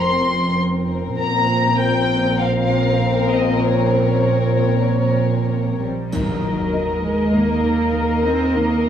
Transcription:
Already playing: F1 F2 C4 A#4
0.00 C6
1.19 A#1 A#2 C4 A#4 A#5
1.79 G5
2.40 F5
3.32 D#5
3.64 C#5
5.82 G3
6.12 D#2 D#3 F#3 A#4 D#5, impact, triangle
6.43 D#3
6.73 D#4
7.04 D#3 G#3
7.34 D#3 A#3
7.64 D#3
7.94 D#3
8.25 C4 D#4
8.54 D#3 A#3
8.85 D#3

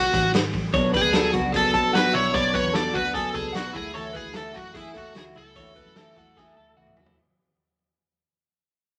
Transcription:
Already playing: F#4
0.14 A1, kick, snare, closed hi-hat
0.34 G#1, snare, closed hi-hat
0.53 A1, kick, open hi-hat
0.74 B1 B2 F#3 B3 D4 C#5, kick, closed hi-hat
0.93 F#3 B3 D4 G#4 B4, kick, closed hi-hat
1.05 D2
1.13 B2 F#3 B3 D4 A4, snare, closed hi-hat
1.33 C#2 F#3 B3 D4 F#4, kick, closed hi-hat
1.52 B2 F#3 B3 D4 G#4 A4, kick, closed hi-hat
1.74 B1 A4, kick, closed hi-hat
1.93 A1 B2 F#3 B3 D4 F#4 B4, snare, closed hi-hat
2.13 B1 F#3 B3 D4 E4 C#5, closed hi-hat
2.34 B1 B2 F#3 B3 D4 C#5 D5, kick, closed hi-hat
2.54 F#3 B3 D4 B4 C#5, kick, closed hi-hat
2.63 E2
2.73 B2 F#3 B3 D4 A4 D5, snare, closed hi-hat
2.93 D2 F#3 B3 D4 F#4 B4, kick, closed hi-hat
3.14 B2 F#3 B3 D4 G#4 A4, kick, closed hi-hat
3.33 C#2 G#4 A4, kick, closed hi-hat
3.53 B1 B2 F#3 B3 D4 F#4, snare, closed hi-hat
3.73 D2 A3 E4 F#4 G#4, kick, closed hi-hat
3.94 D3 E3 A3 E4 F#4 A4 C#5, closed hi-hat
4.13 A3 E4 F#4 G#4 B4, kick, closed hi-hat
4.25 D2
4.34 D3 E3 A3 E4 F#4 A4, snare, closed hi-hat
4.54 F#2 A3 E4 F#4, kick, closed hi-hat
4.74 E3 A3 E4 F#4 G#4, kick, closed hi-hat
4.94 E2 F#4 A4, kick, snare, closed hi-hat
5.15 D2 D3 E3 A3 E4 F#4 G#4, snare, closed hi-hat
5.35 C#2 A3 E4 F#4 A4, closed hi-hat
5.55 D2 D3 E3 A3 E4 F#4 C#5, kick, closed hi-hat
5.76 A3 E4 F#4 B4, kick, closed hi-hat
5.86 F#2
5.96 D3 E3 A3 E4 F#4 A4, snare, closed hi-hat
6.16 E2 A3 E4 F#4, kick, closed hi-hat
6.37 E3 A3 E4 F#4 G#4, kick, snare
6.57 D2 A4
6.77 C#2 D3 E3 A3 E4 F#4
6.87 mid tom
6.96 D2 A3 E4 F#4, floor tom
7.06 floor tom

